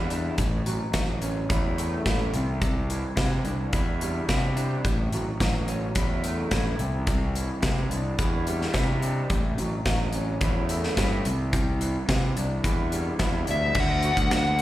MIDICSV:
0, 0, Header, 1, 5, 480
1, 0, Start_track
1, 0, Tempo, 557103
1, 327, Time_signature, 4, 2, 24, 8
1, 12596, End_track
2, 0, Start_track
2, 0, Title_t, "Lead electric guitar"
2, 0, Program_c, 0, 29
2, 11637, Note_on_c, 0, 76, 86
2, 11868, Note_off_c, 0, 76, 0
2, 11890, Note_on_c, 0, 78, 84
2, 12339, Note_off_c, 0, 78, 0
2, 12349, Note_on_c, 0, 78, 90
2, 12596, Note_off_c, 0, 78, 0
2, 12596, End_track
3, 0, Start_track
3, 0, Title_t, "Clean electric guitar"
3, 0, Program_c, 1, 27
3, 0, Note_on_c, 1, 52, 58
3, 0, Note_on_c, 1, 55, 68
3, 0, Note_on_c, 1, 64, 59
3, 87, Note_on_c, 1, 62, 62
3, 113, Note_off_c, 1, 52, 0
3, 326, Note_on_c, 1, 45, 59
3, 327, Note_off_c, 1, 55, 0
3, 328, Note_off_c, 1, 62, 0
3, 568, Note_on_c, 1, 54, 63
3, 594, Note_off_c, 1, 64, 0
3, 800, Note_off_c, 1, 54, 0
3, 811, Note_on_c, 1, 54, 61
3, 1049, Note_on_c, 1, 61, 62
3, 1290, Note_on_c, 1, 64, 71
3, 1529, Note_off_c, 1, 45, 0
3, 1531, Note_on_c, 1, 57, 67
3, 1766, Note_off_c, 1, 64, 0
3, 1770, Note_on_c, 1, 64, 60
3, 2010, Note_on_c, 1, 48, 66
3, 2011, Note_off_c, 1, 61, 0
3, 2012, Note_off_c, 1, 54, 0
3, 2012, Note_off_c, 1, 57, 0
3, 2239, Note_off_c, 1, 48, 0
3, 2249, Note_on_c, 1, 48, 59
3, 2500, Note_on_c, 1, 52, 63
3, 2729, Note_off_c, 1, 52, 0
3, 2733, Note_on_c, 1, 52, 61
3, 2970, Note_on_c, 1, 62, 51
3, 2996, Note_off_c, 1, 64, 0
3, 3212, Note_on_c, 1, 64, 63
3, 3453, Note_off_c, 1, 48, 0
3, 3459, Note_on_c, 1, 55, 62
3, 3697, Note_off_c, 1, 64, 0
3, 3701, Note_on_c, 1, 64, 63
3, 3921, Note_off_c, 1, 62, 0
3, 3931, Note_on_c, 1, 62, 58
3, 3957, Note_off_c, 1, 52, 0
3, 4173, Note_off_c, 1, 62, 0
3, 4178, Note_off_c, 1, 55, 0
3, 4179, Note_on_c, 1, 45, 62
3, 4421, Note_on_c, 1, 54, 60
3, 4446, Note_off_c, 1, 64, 0
3, 4645, Note_off_c, 1, 54, 0
3, 4656, Note_on_c, 1, 54, 65
3, 4894, Note_on_c, 1, 61, 55
3, 5138, Note_on_c, 1, 64, 63
3, 5375, Note_on_c, 1, 57, 66
3, 5379, Note_off_c, 1, 45, 0
3, 5611, Note_off_c, 1, 64, 0
3, 5615, Note_on_c, 1, 64, 61
3, 5856, Note_off_c, 1, 57, 0
3, 5856, Note_off_c, 1, 61, 0
3, 5857, Note_off_c, 1, 54, 0
3, 5860, Note_on_c, 1, 48, 56
3, 6085, Note_off_c, 1, 48, 0
3, 6095, Note_on_c, 1, 48, 63
3, 6338, Note_on_c, 1, 52, 65
3, 6571, Note_off_c, 1, 52, 0
3, 6574, Note_on_c, 1, 52, 60
3, 6809, Note_on_c, 1, 62, 58
3, 6835, Note_off_c, 1, 64, 0
3, 7056, Note_on_c, 1, 64, 69
3, 7297, Note_off_c, 1, 48, 0
3, 7299, Note_on_c, 1, 55, 72
3, 7535, Note_off_c, 1, 64, 0
3, 7538, Note_on_c, 1, 64, 69
3, 7763, Note_off_c, 1, 62, 0
3, 7774, Note_on_c, 1, 62, 67
3, 7800, Note_off_c, 1, 52, 0
3, 8016, Note_off_c, 1, 62, 0
3, 8016, Note_on_c, 1, 45, 61
3, 8018, Note_off_c, 1, 55, 0
3, 8257, Note_on_c, 1, 54, 67
3, 8283, Note_off_c, 1, 64, 0
3, 8491, Note_off_c, 1, 54, 0
3, 8501, Note_on_c, 1, 54, 65
3, 8745, Note_on_c, 1, 61, 57
3, 8977, Note_on_c, 1, 64, 72
3, 9215, Note_off_c, 1, 45, 0
3, 9221, Note_on_c, 1, 57, 65
3, 9457, Note_off_c, 1, 64, 0
3, 9467, Note_on_c, 1, 64, 66
3, 9697, Note_off_c, 1, 54, 0
3, 9697, Note_off_c, 1, 57, 0
3, 9699, Note_off_c, 1, 61, 0
3, 9699, Note_on_c, 1, 48, 60
3, 9701, Note_off_c, 1, 64, 0
3, 9922, Note_off_c, 1, 48, 0
3, 9932, Note_on_c, 1, 48, 64
3, 10170, Note_on_c, 1, 52, 65
3, 10395, Note_off_c, 1, 52, 0
3, 10406, Note_on_c, 1, 52, 58
3, 10653, Note_on_c, 1, 62, 55
3, 10889, Note_on_c, 1, 64, 65
3, 11129, Note_off_c, 1, 48, 0
3, 11133, Note_on_c, 1, 55, 60
3, 11360, Note_off_c, 1, 64, 0
3, 11370, Note_on_c, 1, 64, 62
3, 11600, Note_off_c, 1, 62, 0
3, 11605, Note_off_c, 1, 52, 0
3, 11610, Note_on_c, 1, 62, 60
3, 11847, Note_off_c, 1, 64, 0
3, 11848, Note_off_c, 1, 62, 0
3, 11848, Note_on_c, 1, 50, 69
3, 11849, Note_off_c, 1, 55, 0
3, 12089, Note_on_c, 1, 66, 69
3, 12324, Note_on_c, 1, 62, 61
3, 12566, Note_on_c, 1, 57, 58
3, 12596, Note_off_c, 1, 50, 0
3, 12596, Note_off_c, 1, 57, 0
3, 12596, Note_off_c, 1, 62, 0
3, 12596, Note_off_c, 1, 66, 0
3, 12596, End_track
4, 0, Start_track
4, 0, Title_t, "Fingered electric bass"
4, 0, Program_c, 2, 33
4, 0, Note_on_c, 2, 40, 78
4, 248, Note_off_c, 2, 40, 0
4, 334, Note_on_c, 2, 33, 74
4, 531, Note_off_c, 2, 33, 0
4, 570, Note_on_c, 2, 33, 74
4, 669, Note_off_c, 2, 33, 0
4, 810, Note_on_c, 2, 33, 84
4, 1208, Note_off_c, 2, 33, 0
4, 1289, Note_on_c, 2, 40, 73
4, 1688, Note_off_c, 2, 40, 0
4, 1771, Note_on_c, 2, 33, 75
4, 1970, Note_off_c, 2, 33, 0
4, 2006, Note_on_c, 2, 36, 88
4, 2607, Note_off_c, 2, 36, 0
4, 2727, Note_on_c, 2, 48, 68
4, 2929, Note_off_c, 2, 48, 0
4, 2966, Note_on_c, 2, 36, 72
4, 3169, Note_off_c, 2, 36, 0
4, 3214, Note_on_c, 2, 40, 81
4, 3613, Note_off_c, 2, 40, 0
4, 3696, Note_on_c, 2, 48, 72
4, 4094, Note_off_c, 2, 48, 0
4, 4181, Note_on_c, 2, 33, 75
4, 4378, Note_off_c, 2, 33, 0
4, 4413, Note_on_c, 2, 33, 68
4, 4514, Note_off_c, 2, 33, 0
4, 4653, Note_on_c, 2, 33, 72
4, 5053, Note_off_c, 2, 33, 0
4, 5133, Note_on_c, 2, 40, 78
4, 5533, Note_off_c, 2, 40, 0
4, 5610, Note_on_c, 2, 33, 69
4, 5812, Note_off_c, 2, 33, 0
4, 5850, Note_on_c, 2, 36, 86
4, 6451, Note_off_c, 2, 36, 0
4, 6574, Note_on_c, 2, 48, 76
4, 6775, Note_off_c, 2, 48, 0
4, 6806, Note_on_c, 2, 36, 76
4, 7010, Note_off_c, 2, 36, 0
4, 7059, Note_on_c, 2, 40, 77
4, 7457, Note_off_c, 2, 40, 0
4, 7534, Note_on_c, 2, 48, 77
4, 7933, Note_off_c, 2, 48, 0
4, 8014, Note_on_c, 2, 33, 85
4, 8214, Note_off_c, 2, 33, 0
4, 8263, Note_on_c, 2, 33, 71
4, 8360, Note_off_c, 2, 33, 0
4, 8490, Note_on_c, 2, 33, 78
4, 8891, Note_off_c, 2, 33, 0
4, 8969, Note_on_c, 2, 40, 74
4, 9369, Note_off_c, 2, 40, 0
4, 9455, Note_on_c, 2, 43, 76
4, 9654, Note_off_c, 2, 43, 0
4, 9701, Note_on_c, 2, 36, 90
4, 10294, Note_off_c, 2, 36, 0
4, 10415, Note_on_c, 2, 48, 77
4, 10612, Note_off_c, 2, 48, 0
4, 10653, Note_on_c, 2, 36, 69
4, 10851, Note_off_c, 2, 36, 0
4, 10889, Note_on_c, 2, 40, 77
4, 11286, Note_off_c, 2, 40, 0
4, 11366, Note_on_c, 2, 40, 70
4, 11582, Note_off_c, 2, 40, 0
4, 11624, Note_on_c, 2, 38, 79
4, 11832, Note_off_c, 2, 38, 0
4, 11853, Note_on_c, 2, 38, 87
4, 12148, Note_off_c, 2, 38, 0
4, 12209, Note_on_c, 2, 38, 73
4, 12596, Note_off_c, 2, 38, 0
4, 12596, End_track
5, 0, Start_track
5, 0, Title_t, "Drums"
5, 89, Note_on_c, 9, 42, 52
5, 176, Note_off_c, 9, 42, 0
5, 326, Note_on_c, 9, 42, 72
5, 329, Note_on_c, 9, 36, 85
5, 412, Note_off_c, 9, 42, 0
5, 415, Note_off_c, 9, 36, 0
5, 570, Note_on_c, 9, 42, 54
5, 656, Note_off_c, 9, 42, 0
5, 805, Note_on_c, 9, 42, 80
5, 808, Note_on_c, 9, 38, 96
5, 809, Note_on_c, 9, 36, 89
5, 891, Note_off_c, 9, 42, 0
5, 894, Note_off_c, 9, 38, 0
5, 895, Note_off_c, 9, 36, 0
5, 1048, Note_on_c, 9, 42, 60
5, 1134, Note_off_c, 9, 42, 0
5, 1292, Note_on_c, 9, 36, 110
5, 1293, Note_on_c, 9, 42, 77
5, 1378, Note_off_c, 9, 36, 0
5, 1379, Note_off_c, 9, 42, 0
5, 1536, Note_on_c, 9, 42, 60
5, 1623, Note_off_c, 9, 42, 0
5, 1773, Note_on_c, 9, 36, 86
5, 1773, Note_on_c, 9, 42, 70
5, 1775, Note_on_c, 9, 38, 84
5, 1859, Note_off_c, 9, 36, 0
5, 1859, Note_off_c, 9, 42, 0
5, 1861, Note_off_c, 9, 38, 0
5, 2012, Note_on_c, 9, 42, 51
5, 2099, Note_off_c, 9, 42, 0
5, 2254, Note_on_c, 9, 36, 91
5, 2255, Note_on_c, 9, 42, 71
5, 2340, Note_off_c, 9, 36, 0
5, 2341, Note_off_c, 9, 42, 0
5, 2498, Note_on_c, 9, 42, 52
5, 2584, Note_off_c, 9, 42, 0
5, 2730, Note_on_c, 9, 42, 70
5, 2733, Note_on_c, 9, 36, 95
5, 2733, Note_on_c, 9, 38, 99
5, 2816, Note_off_c, 9, 42, 0
5, 2819, Note_off_c, 9, 36, 0
5, 2819, Note_off_c, 9, 38, 0
5, 2970, Note_on_c, 9, 42, 49
5, 3056, Note_off_c, 9, 42, 0
5, 3211, Note_on_c, 9, 42, 69
5, 3215, Note_on_c, 9, 36, 104
5, 3298, Note_off_c, 9, 42, 0
5, 3301, Note_off_c, 9, 36, 0
5, 3457, Note_on_c, 9, 42, 55
5, 3543, Note_off_c, 9, 42, 0
5, 3693, Note_on_c, 9, 42, 61
5, 3695, Note_on_c, 9, 36, 83
5, 3696, Note_on_c, 9, 38, 88
5, 3780, Note_off_c, 9, 42, 0
5, 3782, Note_off_c, 9, 36, 0
5, 3782, Note_off_c, 9, 38, 0
5, 3936, Note_on_c, 9, 42, 52
5, 4023, Note_off_c, 9, 42, 0
5, 4176, Note_on_c, 9, 36, 82
5, 4179, Note_on_c, 9, 42, 68
5, 4262, Note_off_c, 9, 36, 0
5, 4265, Note_off_c, 9, 42, 0
5, 4415, Note_on_c, 9, 42, 53
5, 4502, Note_off_c, 9, 42, 0
5, 4656, Note_on_c, 9, 36, 87
5, 4658, Note_on_c, 9, 42, 73
5, 4660, Note_on_c, 9, 38, 95
5, 4742, Note_off_c, 9, 36, 0
5, 4744, Note_off_c, 9, 42, 0
5, 4746, Note_off_c, 9, 38, 0
5, 4893, Note_on_c, 9, 42, 53
5, 4979, Note_off_c, 9, 42, 0
5, 5128, Note_on_c, 9, 42, 76
5, 5133, Note_on_c, 9, 36, 102
5, 5214, Note_off_c, 9, 42, 0
5, 5219, Note_off_c, 9, 36, 0
5, 5374, Note_on_c, 9, 42, 60
5, 5460, Note_off_c, 9, 42, 0
5, 5610, Note_on_c, 9, 42, 67
5, 5613, Note_on_c, 9, 36, 88
5, 5613, Note_on_c, 9, 38, 85
5, 5696, Note_off_c, 9, 42, 0
5, 5699, Note_off_c, 9, 36, 0
5, 5699, Note_off_c, 9, 38, 0
5, 5851, Note_on_c, 9, 42, 56
5, 5938, Note_off_c, 9, 42, 0
5, 6090, Note_on_c, 9, 42, 81
5, 6093, Note_on_c, 9, 36, 98
5, 6177, Note_off_c, 9, 42, 0
5, 6179, Note_off_c, 9, 36, 0
5, 6337, Note_on_c, 9, 42, 55
5, 6423, Note_off_c, 9, 42, 0
5, 6570, Note_on_c, 9, 42, 82
5, 6572, Note_on_c, 9, 38, 93
5, 6574, Note_on_c, 9, 36, 99
5, 6656, Note_off_c, 9, 42, 0
5, 6659, Note_off_c, 9, 38, 0
5, 6660, Note_off_c, 9, 36, 0
5, 6816, Note_on_c, 9, 42, 56
5, 6902, Note_off_c, 9, 42, 0
5, 7053, Note_on_c, 9, 42, 81
5, 7055, Note_on_c, 9, 36, 101
5, 7139, Note_off_c, 9, 42, 0
5, 7141, Note_off_c, 9, 36, 0
5, 7296, Note_on_c, 9, 42, 59
5, 7382, Note_off_c, 9, 42, 0
5, 7422, Note_on_c, 9, 38, 30
5, 7508, Note_off_c, 9, 38, 0
5, 7527, Note_on_c, 9, 42, 65
5, 7530, Note_on_c, 9, 38, 80
5, 7534, Note_on_c, 9, 36, 86
5, 7613, Note_off_c, 9, 42, 0
5, 7616, Note_off_c, 9, 38, 0
5, 7620, Note_off_c, 9, 36, 0
5, 7775, Note_on_c, 9, 42, 49
5, 7861, Note_off_c, 9, 42, 0
5, 8011, Note_on_c, 9, 42, 63
5, 8014, Note_on_c, 9, 36, 96
5, 8097, Note_off_c, 9, 42, 0
5, 8100, Note_off_c, 9, 36, 0
5, 8255, Note_on_c, 9, 42, 46
5, 8341, Note_off_c, 9, 42, 0
5, 8491, Note_on_c, 9, 42, 69
5, 8493, Note_on_c, 9, 36, 94
5, 8494, Note_on_c, 9, 38, 96
5, 8578, Note_off_c, 9, 42, 0
5, 8579, Note_off_c, 9, 36, 0
5, 8580, Note_off_c, 9, 38, 0
5, 8724, Note_on_c, 9, 42, 55
5, 8810, Note_off_c, 9, 42, 0
5, 8968, Note_on_c, 9, 42, 72
5, 8972, Note_on_c, 9, 36, 106
5, 9054, Note_off_c, 9, 42, 0
5, 9058, Note_off_c, 9, 36, 0
5, 9211, Note_on_c, 9, 42, 60
5, 9297, Note_off_c, 9, 42, 0
5, 9334, Note_on_c, 9, 38, 30
5, 9420, Note_off_c, 9, 38, 0
5, 9452, Note_on_c, 9, 42, 68
5, 9454, Note_on_c, 9, 36, 87
5, 9455, Note_on_c, 9, 38, 89
5, 9539, Note_off_c, 9, 42, 0
5, 9540, Note_off_c, 9, 36, 0
5, 9541, Note_off_c, 9, 38, 0
5, 9694, Note_on_c, 9, 42, 60
5, 9780, Note_off_c, 9, 42, 0
5, 9933, Note_on_c, 9, 42, 77
5, 9935, Note_on_c, 9, 36, 92
5, 10019, Note_off_c, 9, 42, 0
5, 10021, Note_off_c, 9, 36, 0
5, 10174, Note_on_c, 9, 42, 55
5, 10261, Note_off_c, 9, 42, 0
5, 10414, Note_on_c, 9, 36, 93
5, 10416, Note_on_c, 9, 42, 73
5, 10419, Note_on_c, 9, 38, 103
5, 10501, Note_off_c, 9, 36, 0
5, 10503, Note_off_c, 9, 42, 0
5, 10505, Note_off_c, 9, 38, 0
5, 10655, Note_on_c, 9, 42, 59
5, 10741, Note_off_c, 9, 42, 0
5, 10892, Note_on_c, 9, 36, 98
5, 10894, Note_on_c, 9, 42, 79
5, 10979, Note_off_c, 9, 36, 0
5, 10980, Note_off_c, 9, 42, 0
5, 11133, Note_on_c, 9, 42, 58
5, 11219, Note_off_c, 9, 42, 0
5, 11366, Note_on_c, 9, 42, 62
5, 11369, Note_on_c, 9, 38, 82
5, 11371, Note_on_c, 9, 36, 82
5, 11452, Note_off_c, 9, 42, 0
5, 11455, Note_off_c, 9, 38, 0
5, 11457, Note_off_c, 9, 36, 0
5, 11607, Note_on_c, 9, 42, 50
5, 11693, Note_off_c, 9, 42, 0
5, 11844, Note_on_c, 9, 49, 90
5, 11848, Note_on_c, 9, 36, 95
5, 11930, Note_off_c, 9, 49, 0
5, 11935, Note_off_c, 9, 36, 0
5, 12085, Note_on_c, 9, 42, 52
5, 12171, Note_off_c, 9, 42, 0
5, 12209, Note_on_c, 9, 36, 78
5, 12210, Note_on_c, 9, 42, 59
5, 12295, Note_off_c, 9, 36, 0
5, 12296, Note_off_c, 9, 42, 0
5, 12331, Note_on_c, 9, 42, 62
5, 12333, Note_on_c, 9, 38, 94
5, 12417, Note_off_c, 9, 42, 0
5, 12419, Note_off_c, 9, 38, 0
5, 12567, Note_on_c, 9, 42, 59
5, 12596, Note_off_c, 9, 42, 0
5, 12596, End_track
0, 0, End_of_file